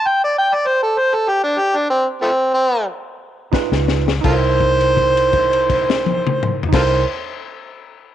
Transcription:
0.07 0.20 G5 medium
0.24 0.35 D5 medium
0.38 0.55 G5 medium
0.54 0.68 D5 medium
0.67 0.81 C5 medium
0.83 0.99 A4 medium
0.98 1.16 C5 medium
1.14 1.30 A4 medium
1.29 1.42 G4 medium
1.43 1.60 D4 medium
1.59 1.78 G4 medium
1.77 1.88 D4 medium
1.90 2.05 C4 medium
2.22 2.31 F3 medium
2.22 2.30 A3 medium
2.22 2.52 C4 medium
2.54 2.85 C4 medium
3.52 4.10 D#4 medium
3.52 4.11 F4 medium
3.52 4.11 B4 medium
3.52 muted fingered electric bass stroke soft
3.52 kick medium
3.52 snare medium
3.72 4.20 C#2 medium
3.72 snare medium
3.88 snare medium
4.08 snare medium
4.21 6.60 C2 medium
4.21 6.59 D#4 medium
4.21 6.60 E4 medium
4.21 4.34 F4 medium
4.21 4.32 A4 medium
4.21 6.60 C5 loud
4.21 kick loud
4.21 crash medium
4.29 6.62 A#4 medium
4.61 kick medium
4.61 crash soft
4.81 crash soft
4.97 kick medium
4.97 crash soft
5.17 crash soft
5.33 kick medium
5.33 crash soft
5.53 crash soft
5.70 kick medium
5.70 crash medium
5.90 snare medium
6.06 high tom medium
6.27 mid tom medium
6.43 mid tom loud
6.63 floor tom medium
6.69 7.03 C2 medium
6.69 7.01 D#4 medium
6.69 7.03 E4 medium
6.69 kick loud
6.73 6.81 F4 medium
6.73 6.81 A4 medium
6.73 7.05 A#4 medium
6.73 7.04 C5 medium
6.73 snare medium
6.73 crash loud

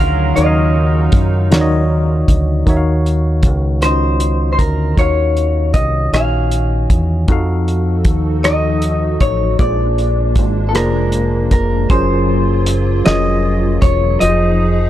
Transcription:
0.00 0.33 D2 loud
0.00 2.63 C#3 medium
0.00 0.36 D#3 medium
0.00 2.24 F#3 medium
0.00 2.63 F#3 loud
0.00 2.63 C#4 medium
0.00 0.37 D#4 medium
0.00 2.24 F4 medium
0.00 0.38 F#4 medium
0.00 2.24 A#4 medium
0.00 0.39 C#5 medium
0.00 0.33 F5 medium
0.00 0.40 F5 loud
0.36 1.10 D#2 loud
0.36 1.27 D#3 medium
0.36 1.27 D#4 medium
0.36 2.65 D#4 medium
0.36 1.28 F#4 medium
0.36 1.28 C#5 medium
0.36 2.24 D#5 medium
0.36 closed hi-hat medium
0.40 0.45 F5 medium
0.46 1.32 F5 medium
1.12 1.53 F#2 medium
1.12 kick loud
1.12 closed hi-hat medium
1.51 2.25 D#2 medium
1.51 2.42 D#3 medium
1.51 2.42 D#4 medium
1.51 2.43 F#4 medium
1.51 2.43 C#5 medium
1.51 snare loud
1.51 closed hi-hat medium
1.55 1.60 D5 medium
1.61 2.47 D#5 medium
2.28 2.63 D2 medium
2.28 kick medium
2.28 closed hi-hat medium
2.66 3.45 D#2 medium
2.66 3.57 D#3 medium
2.66 3.58 D#4 medium
2.66 3.58 F#4 medium
2.66 3.59 C#5 medium
2.66 kick medium
2.66 closed hi-hat medium
2.70 2.75 E5 medium
2.77 3.63 F5 medium
3.06 closed hi-hat soft
3.43 4.55 C#2 medium
3.43 kick medium
3.43 closed hi-hat medium
3.82 4.73 D#3 medium
3.82 4.75 C#4 medium
3.82 4.74 D#4 medium
3.82 3.90 F4 soft
3.82 4.51 C5 medium
3.82 cross-stick medium
3.82 closed hi-hat medium
3.86 4.75 D#5 medium
3.91 4.77 F#4 medium
4.20 closed hi-hat medium
4.53 4.59 C5 medium
4.59 4.94 D2 medium
4.59 4.99 A#4 medium
4.59 kick medium
4.59 closed hi-hat medium
4.96 5.76 D#2 medium
4.96 5.88 D#3 medium
4.96 5.89 D#4 medium
4.96 5.89 F#4 medium
4.96 5.73 C#5 medium
4.96 5.90 C#5 medium
4.96 kick loud
4.96 closed hi-hat soft
5.01 5.90 F5 medium
5.37 closed hi-hat soft
5.74 6.09 C2 medium
5.74 6.10 D#5 medium
5.74 kick medium
5.74 closed hi-hat medium
6.12 6.86 A#1 medium
6.12 7.03 D#3 medium
6.12 7.04 D#4 medium
6.12 7.04 F#4 medium
6.12 7.05 C#5 medium
6.12 6.96 F5 medium
6.12 cross-stick medium
6.12 closed hi-hat medium
6.16 7.05 G#5 medium
6.51 closed hi-hat medium
6.90 7.25 E2 medium
6.90 kick medium
6.90 closed hi-hat medium
7.28 8.05 F2 medium
7.28 8.19 F3 medium
7.28 9.57 F3 medium
7.28 8.19 D#4 medium
7.28 9.58 D#4 medium
7.28 9.57 F#4 medium
7.28 8.20 F#4 medium
7.28 9.57 A4 medium
7.28 8.20 A4 medium
7.28 kick loud
7.28 closed hi-hat medium
7.32 8.21 F5 loud
7.68 closed hi-hat soft
8.05 9.17 D#2 medium
8.05 kick medium
8.05 closed hi-hat medium
8.43 9.34 F3 medium
8.43 9.35 D#4 medium
8.43 9.35 F#4 medium
8.43 9.36 A4 medium
8.43 9.21 D#5 loud
8.43 9.36 D#5 medium
8.43 cross-stick medium
8.43 closed hi-hat medium
8.82 closed hi-hat medium
9.20 9.56 A1 medium
9.20 9.57 C#5 medium
9.20 kick medium
9.20 closed hi-hat medium
9.59 10.38 A#1 medium
9.59 11.88 G#3 medium
9.59 10.50 A#3 medium
9.59 11.88 A#3 medium
9.59 11.88 D4 medium
9.59 10.50 F4 medium
9.59 10.51 G#4 medium
9.59 10.51 C5 medium
9.59 11.09 D5 medium
9.59 kick loud
9.59 closed hi-hat medium
9.63 10.52 D5 medium
9.98 closed hi-hat soft
10.36 10.76 G#1 medium
10.36 kick medium
10.36 closed hi-hat medium
10.69 10.75 A4 medium
10.73 11.48 F1 medium
10.73 11.65 A#3 medium
10.73 11.65 F4 medium
10.73 11.66 G#4 medium
10.73 11.48 A#4 medium
10.73 11.66 C5 medium
10.73 cross-stick loud
10.73 closed hi-hat medium
10.77 11.67 D5 medium
11.12 closed hi-hat medium
11.51 11.87 F1 medium
11.51 11.88 A#4 medium
11.51 kick medium
11.51 closed hi-hat medium
11.90 13.02 F#1 loud
11.90 14.18 F#3 medium
11.90 12.81 F#3 medium
11.90 14.19 A#3 medium
11.90 12.81 C#4 medium
11.90 14.18 F4 medium
11.90 12.82 F4 medium
11.90 12.82 G#4 medium
11.90 12.83 A#4 medium
11.90 13.05 C5 medium
11.90 12.83 C5 medium
11.90 kick loud
11.90 closed hi-hat medium
12.66 closed hi-hat medium
13.04 13.79 F1 medium
13.04 13.96 F#3 medium
13.04 13.96 C#4 medium
13.04 13.97 F4 medium
13.04 13.97 G#4 medium
13.04 13.98 A#4 medium
13.04 13.81 D#5 medium
13.04 snare loud
13.04 closed hi-hat medium
13.09 13.98 C#5 medium
13.82 14.17 E1 medium
13.82 14.20 C#5 medium
13.82 kick medium
13.82 closed hi-hat medium
14.20 14.90 F1 loud
14.20 14.90 F3 medium
14.20 14.90 D#4 medium
14.20 14.90 F4 medium
14.20 14.28 F#4 medium
14.20 14.90 G#4 medium
14.20 14.90 C5 medium
14.20 14.90 D#5 loud
14.20 closed hi-hat medium
14.25 14.90 G#4 medium
14.25 14.90 D#5 medium

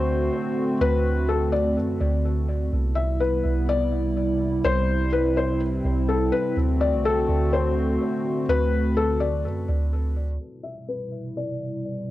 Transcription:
0.00 0.30 D2 loud
0.00 2.69 D3 medium
0.00 2.69 A3 medium
0.00 2.69 C4 medium
0.00 2.69 F#4 medium
0.00 0.77 C5 medium
0.81 1.78 D2 loud
0.81 1.26 B4 loud
1.29 1.51 A4 medium
1.52 1.75 D5 medium
1.77 1.99 F#2 loud
2.01 2.70 D2 loud
2.73 3.42 C2 loud
2.73 6.53 C3 medium
2.73 6.53 G3 medium
2.73 4.63 B3 medium
2.73 6.53 E4 medium
2.95 3.19 E5 medium
3.20 3.66 B4 medium
3.45 4.61 C2 loud
3.69 4.61 D5 medium
4.65 5.81 C2 loud
4.65 10.37 C4 medium
4.65 5.10 C5 loud
5.13 5.35 B4 medium
5.37 5.60 C5 medium
5.85 6.31 C2 loud
6.09 6.31 A4 medium
6.32 6.55 B4 medium
6.57 6.94 D2 loud
6.57 10.37 D3 medium
6.57 10.37 A3 medium
6.57 10.37 F#4 medium
6.81 7.04 D5 medium
6.93 7.27 C2 medium
7.05 7.50 A4 medium
7.29 7.98 D2 loud
7.53 8.45 C5 medium
8.49 9.46 D2 loud
8.49 8.94 B4 loud
8.97 9.20 A4 medium
9.20 9.43 D5 medium
9.45 9.67 F#2 loud
9.69 10.38 D2 loud
10.41 12.11 B2 medium
10.41 12.11 C3 medium
10.41 12.11 G3 medium
10.41 12.11 E4 medium
10.63 10.87 E5 medium
10.88 11.34 B4 medium
11.37 12.11 D5 medium

